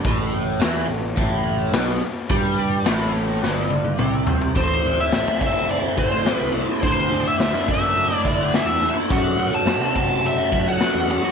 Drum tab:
HH |o---o---o---o---|o---o-----------|o-o-o-o-o-o-o-o-|o-o-o-o-o-o-o-o-|
SD |----o-------o---|----o---o-------|----o-------o---|----o-------o---|
T1 |----------------|----------oo----|----------------|----------------|
T2 |----------------|------------o---|----------------|----------------|
FT |----------------|--------------oo|----------------|----------------|
BD |o-------o-------|o---------------|o-----o---o-----|o-----o---o-----|

HH |o-o-o-o-o-o-o-o-|
SD |----o-------o---|
T1 |----------------|
T2 |----------------|
FT |----------------|
BD |o-----o---o-----|